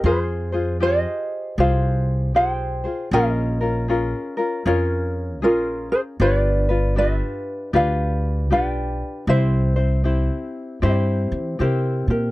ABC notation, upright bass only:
X:1
M:4/4
L:1/8
Q:"Swing" 1/4=78
K:Fm
V:1 name="Upright bass" clef=bass
F,,4 C,,2 =B,,,2 | B,,,4 F,,2 B,,,2 | G,,,4 =D,,2 =B,,,2 | C,,4 G,, =E, C, B,, |]